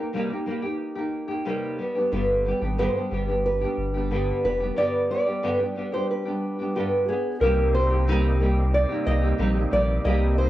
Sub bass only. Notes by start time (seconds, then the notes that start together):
2.12 G1
2.61 G#1
3.11 G1
3.77 G1
4.44 F1
7.41 C2
9.06 C2
9.39 A#1
9.72 A#1
10.05 C2